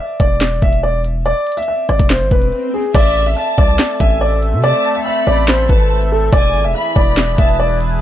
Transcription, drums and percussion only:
0.20 kick, closed hi-hat
0.41 snare, clap
0.62 kick
0.73 closed hi-hat
1.04 closed hi-hat
1.26 closed hi-hat
1.47 closed hi-hat
1.52 closed hi-hat
1.57 closed hi-hat
1.63 closed hi-hat
1.89 cross-stick, closed hi-hat
2.00 kick
2.10 snare, clap, closed hi-hat
2.31 kick
2.42 closed hi-hat
2.52 closed hi-hat
2.95 kick, closed hi-hat, crash
3.16 closed hi-hat
3.26 closed hi-hat
3.58 kick, closed hi-hat
3.79 snare, clap
4.00 kick
4.11 closed hi-hat
4.42 closed hi-hat
4.64 closed hi-hat
4.85 closed hi-hat
4.95 closed hi-hat
5.27 closed hi-hat
5.48 snare, clap, closed hi-hat
5.69 kick
5.80 closed hi-hat
6.01 closed hi-hat
6.33 kick, closed hi-hat
6.54 closed hi-hat
6.64 closed hi-hat
6.96 kick, closed hi-hat
7.17 snare, clap
7.38 kick
7.49 closed hi-hat
7.81 closed hi-hat

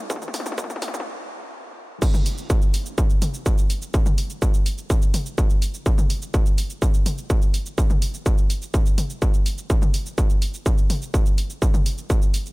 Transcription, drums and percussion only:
0.10 kick, mid tom, shaker
0.16 mid tom
0.22 mid tom, shaker
0.28 mid tom
0.34 open hi-hat, mid tom, shaker
0.40 mid tom
0.46 mid tom, shaker
0.52 mid tom
0.58 kick, mid tom, shaker
0.64 mid tom
0.70 mid tom, shaker
0.76 mid tom
0.82 open hi-hat, mid tom, shaker
0.88 mid tom
0.94 mid tom, shaker
1.00 mid tom
2.02 kick, crash, shaker
2.14 mid tom, shaker
2.26 open hi-hat, shaker
2.38 shaker
2.50 kick, shaker
2.62 shaker
2.74 open hi-hat, shaker
2.86 shaker
2.98 kick, shaker
3.10 shaker
3.22 open hi-hat, mid tom, shaker
3.34 shaker
3.46 kick, shaker
3.58 shaker
3.70 open hi-hat, shaker
3.82 shaker
3.94 kick, shaker
4.06 mid tom, shaker
4.18 open hi-hat, shaker
4.30 shaker
4.42 kick, shaker
4.54 shaker
4.66 open hi-hat, shaker
4.78 shaker
4.90 kick, shaker
5.02 shaker
5.14 open hi-hat, mid tom, shaker
5.26 shaker
5.38 kick, shaker
5.50 shaker
5.62 open hi-hat, shaker
5.74 shaker
5.86 kick, shaker
5.98 mid tom, shaker
6.10 open hi-hat, shaker
6.22 shaker
6.34 kick, shaker
6.46 shaker
6.58 open hi-hat, shaker
6.70 shaker
6.82 kick, shaker
6.94 shaker
7.06 open hi-hat, mid tom, shaker
7.18 shaker
7.30 kick, shaker
7.42 shaker
7.54 open hi-hat, shaker
7.66 shaker
7.78 kick, shaker
7.90 mid tom, shaker
8.02 open hi-hat, shaker
8.14 shaker
8.26 kick, shaker
8.38 shaker
8.50 open hi-hat, shaker
8.62 shaker
8.74 kick, shaker
8.86 shaker
8.98 open hi-hat, mid tom, shaker
9.10 shaker
9.22 kick, shaker
9.34 shaker
9.46 open hi-hat, shaker
9.58 shaker
9.70 kick, shaker
9.82 mid tom, shaker
9.94 open hi-hat, shaker
10.06 shaker
10.18 kick, shaker
10.30 shaker
10.42 open hi-hat, shaker
10.54 shaker
10.66 kick, shaker
10.78 shaker
10.90 open hi-hat, mid tom, shaker
11.02 shaker
11.14 kick, shaker
11.26 shaker
11.38 open hi-hat, shaker
11.50 shaker
11.62 kick, shaker
11.74 mid tom, shaker
11.86 open hi-hat, shaker
11.98 shaker
12.10 kick, shaker
12.22 shaker
12.34 open hi-hat, shaker
12.46 shaker

